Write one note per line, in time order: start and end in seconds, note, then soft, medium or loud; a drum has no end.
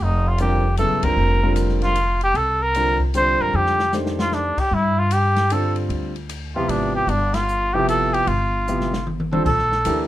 0.00 0.87 F1 medium
0.00 0.30 D#4 medium
0.28 0.40 F4 medium
0.38 0.62 D3 soft
0.38 0.62 G3 soft
0.38 0.62 C4 soft
0.38 0.62 F4 soft
0.38 0.76 G4 medium
0.38 0.62 A#4 medium
0.38 hi-hat pedal soft
0.38 ride medium
0.77 1.01 C#3 medium
0.77 1.01 F#3 soft
0.77 1.01 B3 soft
0.77 1.01 E4 soft
0.77 1.06 A4 medium
0.77 1.01 A4 medium
0.77 hi-hat pedal soft
0.77 ride medium
0.91 1.03 G1 medium
1.03 1.16 F#1 medium
1.03 1.38 D3 soft
1.03 1.38 G3 soft
1.03 1.38 C4 soft
1.03 1.38 F4 soft
1.03 1.57 A#4 medium
1.03 1.38 A#4 medium
1.03 kick medium
1.03 ride medium
1.16 2.31 F1 medium
1.43 1.93 D3 medium
1.43 1.93 G3 medium
1.43 1.93 C4 medium
1.43 1.94 F4 medium
1.43 1.94 A#4 medium
1.56 hi-hat pedal medium
1.56 ride medium
1.69 snare soft
1.82 2.19 F4 medium
1.82 snare soft
1.82 ride soft
1.96 hi-hat pedal soft
1.96 ride medium
2.21 2.38 G4 medium
2.21 ride soft
2.34 3.35 C2 medium
2.34 2.64 A4 medium
2.34 ride soft
2.63 3.01 A#4 medium
2.75 2.98 D3 soft
2.75 2.98 G3 soft
2.75 2.98 C4 soft
2.75 2.98 F4 soft
2.75 2.98 A#4 soft
2.75 hi-hat pedal soft
2.75 ride medium
3.00 kick medium
3.14 3.74 D3 soft
3.14 3.74 G3 soft
3.14 3.74 C4 soft
3.14 3.74 F4 soft
3.14 3.75 C5 medium
3.14 3.43 C5 medium
3.14 hi-hat pedal medium
3.14 ride medium
3.40 3.53 F#2 medium
3.40 3.57 A#4 medium
3.53 4.54 F2 medium
3.53 3.94 G4 medium
3.53 mid tom soft
3.66 snare soft
3.79 snare medium
3.93 4.53 D#3 soft
3.93 4.53 A3 soft
3.93 4.53 D4 soft
3.93 4.53 G4 soft
3.93 4.53 C5 medium
3.93 snare medium
3.93 hi-hat pedal medium
4.06 snare medium
4.19 4.35 F4 medium
4.19 snare medium
4.32 4.61 D4 medium
4.32 snare soft
4.57 4.76 G4 medium
4.57 muted upright bass stroke soft
4.57 kick medium
4.57 crash medium
4.71 5.86 G2 medium
4.71 5.00 E4 medium
4.99 5.14 F4 medium
5.11 5.54 G4 medium
5.11 hi-hat pedal medium
5.11 ride medium
5.36 snare soft
5.36 ride soft
5.50 6.11 D3 soft
5.50 6.11 G3 soft
5.50 6.11 C4 medium
5.50 6.11 F4 soft
5.50 6.11 A4 medium
5.50 5.77 A4 medium
5.50 hi-hat pedal soft
5.50 ride medium
5.76 ride soft
5.89 6.65 D2 medium
5.89 ride soft
6.16 ride soft
6.29 hi-hat pedal soft
6.29 ride medium
6.56 7.06 C3 medium
6.56 7.06 F3 medium
6.56 7.06 B3 medium
6.56 7.06 E4 soft
6.56 6.71 F4 medium
6.56 7.06 G4 medium
6.68 7.05 G#1 medium
6.68 6.95 D4 medium
6.68 ride medium
6.96 7.11 G4 medium
7.07 8.22 G1 medium
7.07 7.36 D4 medium
7.07 ride soft
7.34 7.75 F4 medium
7.34 snare medium
7.34 ride medium
7.49 hi-hat pedal medium
7.74 8.25 C3 medium
7.74 8.25 F3 medium
7.74 8.25 B3 medium
7.74 8.25 E4 medium
7.74 7.88 G4 medium
7.74 8.25 G4 medium
7.89 8.15 A4 medium
7.89 hi-hat pedal soft
7.89 ride medium
8.14 8.29 G4 medium
8.14 ride soft
8.27 9.42 G1 medium
8.27 9.07 F4 medium
8.27 ride soft
8.68 8.91 C3 soft
8.68 8.91 F3 soft
8.68 8.91 B3 soft
8.68 8.91 E4 soft
8.68 8.91 G4 medium
8.68 hi-hat pedal medium
8.68 mid tom soft
8.81 snare soft
8.93 snare medium
9.07 high tom medium
9.20 high tom medium
9.32 9.45 D3 medium
9.32 9.45 G3 medium
9.32 9.45 C4 medium
9.32 9.45 F4 soft
9.32 9.44 A4 medium
9.32 9.45 C5 medium
9.32 high tom medium
9.45 9.84 A#1 medium
9.45 10.07 A4 medium
9.45 kick medium
9.45 crash medium
9.59 snare soft
9.72 snare soft
9.85 10.07 D2 medium
9.85 10.07 E3 medium
9.85 10.07 A3 soft
9.85 10.07 D4 soft
9.85 10.07 G4 soft
9.85 10.07 A#4 medium
9.85 hi-hat pedal medium
9.85 ride medium